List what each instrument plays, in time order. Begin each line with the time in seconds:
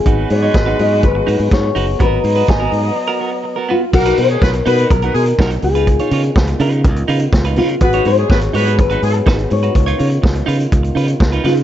Already playing: french horn section B3, nylon-string guitar G#4
0.06 fingered electric bass G#1, french horn section F#3 G#4, horn section G#3 F#4 B4, clean electric guitar D#4 F#4 B4, kick, closed hi-hat
0.30 fingered electric bass G#2, nylon-string guitar D#5, muted clean electric guitar stroke, open hi-hat
0.42 clean electric guitar D#4 F#4 C#5
0.54 fingered electric bass G#1, muted clean electric guitar stroke, kick, snare, closed hi-hat
0.66 clean electric guitar D#4 F#4 B4
0.79 fingered electric bass G#2, nylon-string guitar D#5, muted clean electric guitar stroke, open hi-hat
0.91 muted clean electric guitar stroke
1.03 fingered electric bass G#1, nylon-string guitar B4, kick, closed hi-hat
1.15 muted clean electric guitar stroke
1.27 fingered electric bass G#2, clean electric guitar D#4 F#4 B4, open hi-hat
1.38 fingered electric bass G#2, muted clean electric guitar stroke
1.51 fingered electric bass G#2, nylon-string guitar C#5, kick, snare, closed hi-hat
1.63 muted clean electric guitar stroke
1.75 fingered electric bass F#1, clean electric guitar D#4 F#4 B4, open hi-hat
1.87 muted clean electric guitar stroke
1.99 fingered electric bass G#1, clean electric guitar B3 F#4 A#4, horn section B3 D#5 A#5, french horn section B4, nylon-string guitar B4, kick, closed hi-hat
2.24 fingered electric bass G#2, muted clean electric guitar stroke, open hi-hat
2.36 clean electric guitar B3 F#4 B4
2.48 fingered electric bass G#1, nylon-string guitar G#5, kick, snare, closed hi-hat
2.60 clean electric guitar B3 F#4 A#4
2.72 fingered electric bass G#2, muted clean electric guitar stroke, open hi-hat
2.84 muted clean electric guitar stroke
2.96 muted clean electric guitar stroke
3.08 clean electric guitar B3 F#4 A#4
3.20 clean electric guitar B3 F#4 A#4
3.31 muted clean electric guitar stroke
3.44 muted clean electric guitar stroke
3.56 clean electric guitar B3 F#4 A#4
3.69 clean electric guitar B3 F#4 B4, nylon-string guitar F4
3.82 muted clean electric guitar stroke
3.93 fingered electric bass B1, french horn section D#3 B3 A#4, horn section A#3 A#4, nylon-string guitar F#4, muted clean electric guitar stroke, kick, crash
4.06 clean electric guitar D#4 F#4 B4, closed hi-hat
4.17 fingered electric bass B2, clean electric guitar D#4 F#4 B4, nylon-string guitar C#5, open hi-hat
4.29 horn section G#3 G#4, closed hi-hat
4.42 fingered electric bass B1, horn section B3 B4, muted clean electric guitar stroke, kick, snare
4.53 muted clean electric guitar stroke, closed hi-hat
4.66 fingered electric bass B2, horn section B3 B4, clean electric guitar D#4 F#4 B4, nylon-string guitar B4, open hi-hat
4.78 clean electric guitar D#4 F#4 B4, closed hi-hat
4.90 fingered electric bass B1, nylon-string guitar A#4, muted clean electric guitar stroke, kick, closed hi-hat
5.02 horn section B3 B4, clean electric guitar D#4 F#4 A#4, closed hi-hat
5.14 fingered electric bass B2, horn section G#3 G#4, muted clean electric guitar stroke, open hi-hat
5.26 muted clean electric guitar stroke, closed hi-hat
5.39 fingered electric bass B1, clean electric guitar D#4 F#4 A#4, kick, snare
5.51 muted clean electric guitar stroke, closed hi-hat
5.62 fingered electric bass C#2, french horn section F4, nylon-string guitar G#4, muted clean electric guitar stroke, open hi-hat
5.75 clean electric guitar D#4 F4 B4, closed hi-hat
5.87 muted clean electric guitar stroke, kick, closed hi-hat
5.99 clean electric guitar D#4 F4 C#5, closed hi-hat
6.11 fingered electric bass C#3, clean electric guitar D#4 F4 C#5, open hi-hat
6.23 muted clean electric guitar stroke, closed hi-hat
6.36 fingered electric bass C#2, muted clean electric guitar stroke, kick, snare
6.47 muted clean electric guitar stroke, closed hi-hat
6.60 fingered electric bass C#3, clean electric guitar D#4 F4 B4, open hi-hat
6.72 muted clean electric guitar stroke, closed hi-hat
6.84 fingered electric bass C#2, kick, closed hi-hat
6.96 muted clean electric guitar stroke, closed hi-hat
7.08 fingered electric bass C#3, clean electric guitar D#4 F4 B4, open hi-hat
7.20 muted clean electric guitar stroke, closed hi-hat
7.33 fingered electric bass C#2, muted clean electric guitar stroke, kick, snare
7.44 clean electric guitar D#4 F4 B4, closed hi-hat
7.56 fingered electric bass C#3, clean electric guitar D#4 F4 B4, nylon-string guitar F4, open hi-hat
7.69 muted clean electric guitar stroke, closed hi-hat
7.81 fingered electric bass G#1, french horn section F#3 G#4, horn section B3 B4, nylon-string guitar F#4, muted clean electric guitar stroke, kick, closed hi-hat
7.93 clean electric guitar D#4 F#4 C#5, closed hi-hat
8.05 fingered electric bass G#2, clean electric guitar D#4 F#4 C#5, nylon-string guitar C#5, open hi-hat
8.17 horn section G#3 G#4, muted clean electric guitar stroke, closed hi-hat
8.30 fingered electric bass G#1, horn section B3 B4, muted clean electric guitar stroke, kick, snare
8.41 muted clean electric guitar stroke, closed hi-hat
8.53 fingered electric bass G#2, horn section B3 B4, clean electric guitar D#4 F#4 C#5, nylon-string guitar B4, open hi-hat
8.65 clean electric guitar D#4 F#4 C#5, closed hi-hat
8.78 fingered electric bass G#1, nylon-string guitar B4, muted clean electric guitar stroke, kick, closed hi-hat
8.90 horn section B3 B4, clean electric guitar D#4 F#4 B4, closed hi-hat
9.02 fingered electric bass G#2, horn section G#3 G#4, muted clean electric guitar stroke, open hi-hat
9.14 muted clean electric guitar stroke, closed hi-hat
9.26 fingered electric bass G#1, clean electric guitar D#4 F#4 B4, kick, snare
9.38 muted clean electric guitar stroke, closed hi-hat
9.50 fingered electric bass G#2, nylon-string guitar C#5, muted clean electric guitar stroke, open hi-hat
9.63 clean electric guitar D#4 F#4 B4, closed hi-hat
9.74 fingered electric bass C#2, french horn section D#3 F4, muted clean electric guitar stroke, kick, closed hi-hat
9.86 clean electric guitar D#4 F4 C#5, closed hi-hat
9.98 fingered electric bass C#3, clean electric guitar D#4 F4 C#5, open hi-hat
10.10 muted clean electric guitar stroke, closed hi-hat
10.22 fingered electric bass C#2, muted clean electric guitar stroke, kick, snare
10.35 muted clean electric guitar stroke, closed hi-hat
10.46 fingered electric bass C#3, clean electric guitar D#4 F4 B4, open hi-hat
10.59 muted clean electric guitar stroke, closed hi-hat
10.72 fingered electric bass C#2, kick, closed hi-hat
10.83 muted clean electric guitar stroke, closed hi-hat
10.95 fingered electric bass C#3, clean electric guitar D#4 F4 B4, open hi-hat
11.08 muted clean electric guitar stroke, closed hi-hat
11.20 fingered electric bass C#2, muted clean electric guitar stroke, kick, snare
11.32 clean electric guitar D#4 F4 B4, closed hi-hat
11.44 fingered electric bass C#3, clean electric guitar D#4 F4 B4, nylon-string guitar F4, snare, open hi-hat
11.56 muted clean electric guitar stroke, closed hi-hat